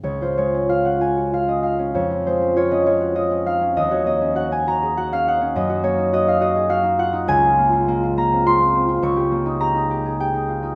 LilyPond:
<<
  \new Staff \with { instrumentName = "Harp" } { \time 3/4 \key des \major \tempo 4 = 100 << { <aes' des''>16 c''16 des''8 f''16 ges''16 aes''8 f''16 ees''16 f''8 | des''8 c''8 des''16 ees''16 des''8 ees''8 f''8 | ees''16 des''16 ees''8 ges''16 aes''16 bes''8 ges''16 f''16 ges''8 | ees''8 des''8 ees''16 f''16 ees''8 f''8 ges''8 |
\key bes \dorian aes''4. bes''8 c'''4 | des'''4 bes''4 g''4 | } \\ { des,16 f'16 aes16 des'16 f'16 des'16 f'16 ges'16 f'16 des'16 ees'16 des'16 | f,16 f'16 aes16 des'16 f'16 des'16 f'16 ges'16 f'16 des'16 ees'16 des'16 | ees,16 ges'16 bes16 des'16 ges'16 des'16 ges'16 aes'16 ges'16 des'16 ees'16 des'16 | ges,16 ges'16 bes16 ees'16 ges'16 ees'16 ges'16 aes'16 ges'16 ees'16 f'16 ees'16 |
des,16 f'16 bes16 f'16 bes16 f'16 bes16 c'16 f'16 bes16 c'16 f'16 | des,16 g'16 bes16 ees'16 g'16 ees'16 g'16 aes'16 g'16 ees'16 f'16 ees'16 | } >> }
  \new Staff \with { instrumentName = "Harp" } { \clef bass \time 3/4 \key des \major aes2.~ | aes2. | r2. | r2. |
\key bes \dorian r2. | r2. | }
>>